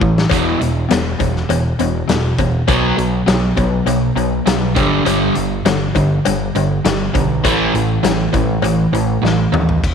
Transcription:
0.00 0.24 A1 medium
0.00 0.27 A2 medium
0.00 0.27 E3 medium
0.00 kick medium
0.18 snare medium
0.30 0.54 E1 medium
0.30 0.58 E2 medium
0.30 0.58 B2 loud
0.30 0.58 E3 loud
0.30 kick loud
0.30 closed hi-hat loud
0.30 cowbell medium
0.59 0.84 E1 medium
0.59 0.86 E2 medium
0.59 0.86 B2 medium
0.59 closed hi-hat medium
0.89 1.13 E1 medium
0.89 1.16 E2 medium
0.89 1.16 B2 medium
0.89 snare loud
0.89 closed hi-hat medium
0.89 cowbell medium
1.19 1.43 E1 medium
1.19 1.46 E2 medium
1.19 1.46 B2 medium
1.19 kick medium
1.19 closed hi-hat medium
1.19 cowbell medium
1.36 snare soft
1.49 1.72 E1 loud
1.49 1.76 E2 medium
1.49 1.76 B2 medium
1.49 closed hi-hat medium
1.49 cowbell medium
1.79 2.02 E1 medium
1.79 2.06 E2 medium
1.79 2.06 B2 medium
1.79 closed hi-hat medium
1.79 cowbell medium
2.08 2.32 E1 medium
2.08 2.35 E2 medium
2.08 2.35 B2 medium
2.08 snare loud
2.08 closed hi-hat medium
2.38 2.61 E1 medium
2.38 2.65 E2 medium
2.38 2.66 B2 medium
2.38 kick medium
2.38 closed hi-hat medium
2.38 cowbell medium
2.67 2.91 B1 loud
2.67 2.96 B2 medium
2.67 2.96 F#3 medium
2.67 2.96 B3 loud
2.67 kick loud
2.67 closed hi-hat medium
2.67 cowbell medium
2.97 3.21 B1 medium
2.97 3.24 B2 medium
2.97 3.24 F#3 medium
2.97 closed hi-hat medium
3.26 3.51 B1 medium
3.26 3.54 B2 medium
3.26 3.54 F#3 medium
3.26 snare loud
3.26 closed hi-hat medium
3.26 cowbell medium
3.57 3.80 B1 medium
3.57 3.84 B2 medium
3.57 3.84 F#3 medium
3.57 kick medium
3.57 closed hi-hat medium
3.57 cowbell medium
3.86 4.09 B1 medium
3.86 4.13 B2 medium
3.86 4.14 F#3 medium
3.86 closed hi-hat medium
3.86 cowbell medium
4.16 4.39 B1 medium
4.16 4.43 B2 medium
4.16 4.43 F#3 medium
4.16 closed hi-hat medium
4.16 cowbell medium
4.46 4.78 B1 medium
4.46 4.73 B2 medium
4.46 4.73 F#3 medium
4.46 snare loud
4.46 closed hi-hat loud
4.75 5.00 G1 medium
4.75 5.04 G2 medium
4.75 5.04 D3 medium
4.75 5.05 G3 medium
4.75 kick loud
4.75 closed hi-hat medium
4.75 cowbell medium
5.05 5.29 G1 loud
5.05 5.34 G2 medium
5.05 5.34 D3 loud
5.05 5.34 G3 loud
5.05 closed hi-hat loud
5.05 cowbell medium
5.35 5.60 G1 medium
5.35 5.62 G2 medium
5.35 5.63 D3 medium
5.35 closed hi-hat medium
5.65 5.89 G1 medium
5.65 5.92 G2 medium
5.65 5.93 D3 medium
5.65 snare loud
5.65 closed hi-hat medium
5.65 cowbell medium
5.95 6.18 G1 medium
5.95 6.22 G2 medium
5.95 6.22 D3 medium
5.95 kick medium
5.95 closed hi-hat medium
5.95 cowbell medium
6.25 6.49 G1 medium
6.25 6.52 G2 medium
6.25 6.52 D3 medium
6.25 closed hi-hat loud
6.25 cowbell medium
6.55 6.79 G1 medium
6.55 6.82 G2 medium
6.55 6.82 D3 medium
6.55 closed hi-hat medium
6.55 cowbell medium
6.84 7.08 G1 medium
6.84 7.12 G2 medium
6.84 7.12 D3 medium
6.84 snare loud
6.84 closed hi-hat loud
7.14 7.45 B1 medium
7.14 7.41 G2 medium
7.14 7.41 D3 medium
7.14 kick medium
7.14 closed hi-hat medium
7.14 cowbell medium
7.44 7.68 A1 loud
7.44 7.72 A2 medium
7.44 7.72 E3 loud
7.44 7.73 A3 loud
7.44 kick loud
7.44 closed hi-hat loud
7.44 cowbell loud
7.74 7.97 A1 medium
7.74 8.01 A2 medium
7.74 8.01 E3 medium
7.74 closed hi-hat medium
8.03 8.26 A1 medium
8.03 8.31 A2 medium
8.03 8.31 E3 medium
8.03 snare loud
8.03 closed hi-hat medium
8.03 cowbell medium
8.33 8.57 A1 medium
8.33 8.61 A2 medium
8.33 8.61 E3 medium
8.33 kick medium
8.33 closed hi-hat medium
8.33 cowbell medium
8.62 8.86 A1 medium
8.62 8.91 A2 medium
8.62 8.91 E3 medium
8.62 closed hi-hat medium
8.62 cowbell medium
8.92 9.16 A1 medium
8.92 9.21 A2 medium
8.92 9.21 E3 medium
8.92 closed hi-hat medium
8.92 cowbell medium
9.22 9.46 A1 medium
9.22 9.50 A2 medium
9.22 9.51 E3 medium
9.22 snare medium
9.52 9.85 D#2 medium
9.52 9.80 A2 medium
9.52 9.80 E3 medium
9.52 mid tom loud
9.52 cowbell medium
9.69 floor tom medium
9.84 9.94 E1 medium
9.84 kick medium
9.84 crash medium

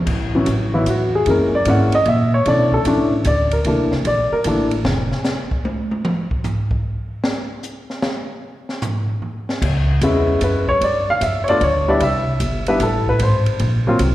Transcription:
0.06 0.46 A1 medium
0.06 kick medium
0.06 crash medium
0.35 0.46 E3 medium
0.35 0.46 F#3 medium
0.35 0.47 B3 soft
0.35 0.47 C#4 medium
0.46 0.86 A1 medium
0.46 hi-hat pedal soft
0.46 ride medium
0.74 0.86 E3 medium
0.74 0.86 F#3 medium
0.74 0.86 B3 medium
0.74 0.86 E4 medium
0.86 1.25 E2 medium
0.86 1.14 F#4 medium
0.86 hi-hat pedal medium
0.86 ride medium
1.15 1.27 G#4 medium
1.26 1.65 F#2 medium
1.26 1.51 E3 soft
1.26 1.51 G#3 soft
1.26 1.51 A#3 soft
1.26 1.52 C#4 soft
1.26 ride medium
1.30 1.54 A#4 medium
1.55 1.67 D5 medium
1.65 2.05 G#2 medium
1.65 1.91 E3 medium
1.65 1.91 G#3 medium
1.65 1.91 A#3 medium
1.65 1.91 C#4 medium
1.65 hi-hat pedal soft
1.65 ride medium
1.70 1.94 F#5 medium
1.92 2.07 D#5 medium
1.92 ride soft
2.05 2.45 A#2 medium
2.05 2.33 E5 medium
2.05 ride soft
2.34 2.46 C#5 medium
2.46 2.85 B2 medium
2.46 2.71 E3 medium
2.46 2.71 A3 soft
2.46 2.71 C#4 soft
2.46 2.71 D4 medium
2.46 2.73 D5 medium
2.46 ride medium
2.72 2.81 A4 medium
2.72 kick soft
2.85 3.24 A2 medium
2.85 3.10 E3 medium
2.85 3.11 A3 medium
2.85 3.11 C#4 medium
2.85 3.11 D4 medium
2.85 hi-hat pedal soft
2.85 ride medium
3.25 3.64 D2 medium
3.25 3.52 D5 medium
3.25 hi-hat pedal medium
3.25 ride medium
3.51 3.90 A#4 medium
3.51 ride soft
3.64 3.90 C2 medium
3.64 3.90 E3 soft
3.64 3.90 A3 soft
3.64 3.90 A#3 soft
3.64 3.91 D4 medium
3.64 ride medium
3.92 muted upright bass stroke soft
3.92 snare medium
4.05 4.30 A#1 medium
4.05 4.32 D5 medium
4.05 ride medium
4.32 4.69 A#4 medium
4.32 muted upright bass stroke soft
4.44 4.84 A1 medium
4.44 4.70 E3 medium
4.44 4.70 A3 soft
4.44 4.70 A#3 soft
4.44 4.70 D4 medium
4.44 hi-hat pedal soft
4.44 ride medium
4.71 ride soft
4.85 5.11 F1 medium
4.85 snare medium
5.12 snare soft
5.24 snare medium
5.24 hi-hat pedal soft
5.51 kick medium
5.65 high tom medium
5.91 high tom medium
6.05 mid tom medium
6.31 kick medium
6.44 floor tom medium
6.44 hi-hat pedal soft
6.71 kick medium
7.24 snare loud
7.63 hi-hat pedal soft
7.90 snare soft
8.02 snare medium
8.69 snare soft
8.82 floor tom medium
8.82 hi-hat pedal medium
9.09 floor tom soft
9.22 floor tom soft
9.49 snare medium
9.62 10.01 C#2 medium
9.62 kick medium
9.62 crash medium
10.01 10.41 E2 medium
10.01 10.64 G#3 medium
10.01 10.64 B3 medium
10.01 10.64 C#4 medium
10.01 10.64 E4 medium
10.01 hi-hat pedal medium
10.01 ride medium
10.41 10.81 F#2 medium
10.41 10.69 B4 medium
10.41 hi-hat pedal soft
10.41 ride medium
10.68 10.82 C#5 medium
10.68 kick soft
10.81 11.20 G2 medium
10.81 11.09 D5 medium
10.81 ride medium
11.10 11.22 F5 loud
11.21 11.60 F2 medium
11.21 11.48 E5 medium
11.21 hi-hat pedal medium
11.21 ride medium
11.44 11.46 C#5 medium
11.44 ride soft
11.49 11.61 A3 medium
11.49 11.61 B3 medium
11.49 11.61 D4 medium
11.49 11.61 F4 medium
11.49 11.62 D5 medium
11.61 12.00 D2 medium
11.61 11.88 C#5 medium
11.61 ride soft
11.88 12.00 G3 medium
11.88 12.00 B3 medium
11.88 12.01 D4 medium
11.88 12.01 E4 medium
11.88 12.01 D5 medium
12.00 12.39 C2 medium
12.00 12.64 E5 loud
12.00 ride medium
12.40 12.79 G1 medium
12.40 hi-hat pedal medium
12.40 ride medium
12.66 12.80 G3 medium
12.66 12.80 B3 medium
12.66 12.80 D4 medium
12.66 12.81 E4 medium
12.66 12.81 B4 medium
12.66 ride soft
12.80 13.19 A1 medium
12.80 13.08 A4 medium
12.80 hi-hat pedal medium
12.80 ride medium
13.06 13.21 B4 medium
13.06 kick medium
13.19 13.59 G#1 medium
13.19 13.97 C5 medium
13.19 ride medium
13.46 ride soft
13.59 13.99 A#1 medium
13.59 ride medium
13.87 13.99 F#3 medium
13.87 13.99 A#3 medium
13.87 13.99 C4 medium
13.87 14.00 F4 medium
13.99 14.15 C2 medium
13.99 hi-hat pedal soft
13.99 ride medium

